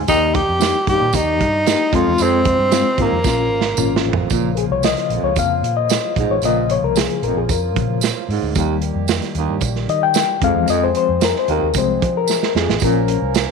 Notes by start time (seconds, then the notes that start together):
0.08 D#2 A#3 D#4 G4, kick, closed hi-hat, tambourine
0.34 G4, kick, closed hi-hat
0.49 F2
0.59 A#3 D#4 G4, snare, closed hi-hat, tambourine
0.87 D#2 G2 A#3 D#4 G4, kick, closed hi-hat
1.01 A#2
1.13 D#2 A#3 D#4 G4, kick, closed hi-hat, tambourine
1.40 G2, kick, closed hi-hat
1.66 A#3 D#4 G4, snare, closed hi-hat, tambourine
1.92 F2 C3 F3 G#3 C4 F4, kick, closed hi-hat
2.07 E2
2.18 F2 C4, closed hi-hat, tambourine
2.45 kick, closed hi-hat
2.59 G2
2.71 G#3 C4 F4, snare, closed hi-hat, tambourine
2.98 D#2 G#2 G#3 A#3 C4 F4, kick, closed hi-hat
3.12 F2
3.24 A#1 C#3 A#3 C#4 F4, kick, snare, tambourine
3.51 G#1
3.61 snare
3.77 G#1 A#3 C#4 F4, mid tom, tambourine
3.96 snare
4.05 A1 F2
4.13 floor tom
4.30 A#1 A#2 C#3 F3 A#3 F4, kick, closed hi-hat, tambourine
4.55 G#4 A#4, closed hi-hat
4.70 C2 C#5
4.83 D#5, snare, closed hi-hat, tambourine
4.97 snare, closed hi-hat
5.10 A#1 F2, closed hi-hat
5.22 C#2 C#5
5.36 F2 C#3 F3 A#3 F5, kick, closed hi-hat, tambourine
5.62 A#2, closed hi-hat
5.77 D#5
5.90 snare, closed hi-hat, tambourine
6.16 A#1 G#2, kick, closed hi-hat
6.30 A1 C#5
6.42 A#1 A#2 C#3 F3 A#3 D#5, closed hi-hat, tambourine
6.70 C#5, closed hi-hat
6.82 C2 A#4
6.96 G#4, snare, closed hi-hat, tambourine
7.10 closed hi-hat
7.22 A#1 F2 A#4, closed hi-hat
7.36 A#1 G#4
7.49 F2 A#4, kick, closed hi-hat, tambourine
7.76 A#2 C#3 F3 A#3, kick, closed hi-hat
8.01 snare, closed hi-hat, tambourine
8.29 G#2, open hi-hat
8.42 D2
8.55 D#2 D#3 G3 A#3 G4, kick, closed hi-hat, tambourine
8.82 closed hi-hat
8.95 F2
9.08 snare, closed hi-hat, tambourine
9.22 snare, closed hi-hat
9.35 D#2, closed hi-hat
9.48 G2
9.61 A#1, kick, closed hi-hat, tambourine
9.76 snare
9.88 D#3 D#5, closed hi-hat
10.03 G5
10.14 snare, closed hi-hat, tambourine
10.42 F2 F3 G#3 C4 G#4 F5, kick, closed hi-hat
10.56 E2
10.68 F2 D#5, closed hi-hat, tambourine
10.84 C5
10.95 C5, closed hi-hat
11.09 F2
11.21 A#4, snare, closed hi-hat, tambourine
11.36 C5, snare
11.48 D#2, closed hi-hat
11.52 A#4
11.62 D#2
11.74 C2 F3 G#3 C4, kick, closed hi-hat, tambourine
11.78 C5
12.02 F3, kick, closed hi-hat
12.17 A#4
12.28 snare, tambourine
12.43 snare
12.55 F2 G#4, snare
12.69 A1, snare
12.80 A#1 A#2 F3 A#3 C#4 A#4, kick, closed hi-hat, tambourine
12.84 A#4
13.08 closed hi-hat
13.22 C2
13.35 snare, closed hi-hat, tambourine